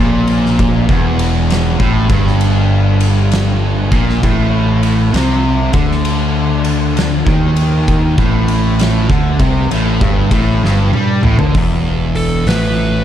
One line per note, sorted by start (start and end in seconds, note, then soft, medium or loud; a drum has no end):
0.00 0.84 A#1 loud
0.00 0.87 A#2 loud
0.27 ride medium
0.46 snare soft
0.59 kick loud
0.59 ride loud
0.88 1.76 E1 loud
0.88 1.78 E2 medium
0.88 kick loud
1.19 ride medium
1.50 snare loud
1.50 ride loud
1.79 2.07 A1 loud
1.79 2.08 A2 loud
1.79 kick loud
2.09 3.88 G1 medium
2.09 3.90 G2 medium
2.09 kick loud
2.09 ride medium
2.27 snare soft
2.41 ride loud
3.00 ride medium
3.32 snare loud
3.32 ride loud
3.91 4.21 A#1 loud
3.91 4.22 A#2 loud
3.91 kick loud
3.91 ride medium
4.09 snare soft
4.23 5.10 A1 loud
4.23 5.14 A2 loud
4.23 kick loud
4.23 ride loud
4.83 ride medium
5.13 5.69 C2 medium
5.13 5.72 C3 loud
5.13 snare loud
5.13 ride loud
5.73 7.22 D2 medium
5.73 7.24 D3 loud
5.73 kick loud
5.73 ride medium
5.91 snare soft
6.05 ride loud
6.64 ride medium
6.97 snare loud
6.97 ride loud
7.26 8.14 D#2 medium
7.26 8.16 D#3 medium
7.26 kick loud
7.56 ride medium
7.88 kick loud
7.88 ride loud
8.18 9.05 A1 loud
8.18 9.08 A2 loud
8.18 kick loud
8.48 ride medium
8.79 snare loud
8.79 ride loud
9.09 9.37 D2 medium
9.09 9.37 D3 loud
9.09 kick loud
9.39 9.69 C2 loud
9.39 9.70 C3 loud
9.39 kick loud
9.39 ride medium
9.71 9.99 A1 loud
9.71 9.99 A2 loud
9.71 ride loud
10.01 10.29 G1 loud
10.01 10.29 G2 medium
10.01 kick loud
10.31 10.61 A1 loud
10.31 10.62 A2 loud
10.31 kick loud
10.31 ride medium
10.62 10.90 G1 medium
10.62 10.91 G2 medium
10.62 snare medium
10.92 11.21 G2 loud
10.92 11.20 G3 loud
10.92 high tom medium
11.23 11.38 A1 loud
11.23 11.38 A2 loud
11.23 mid tom medium
11.38 11.53 D2 loud
11.38 11.54 D3 medium
11.38 floor tom medium
11.54 12.43 E1 medium
11.54 12.46 E2 medium
11.54 kick loud
11.54 open hi-hat medium
12.15 12.45 A4 medium
12.15 open hi-hat medium
12.46 13.04 A1 loud
12.46 13.04 A2 loud
12.46 13.04 B4 medium
12.46 snare loud
12.46 open hi-hat medium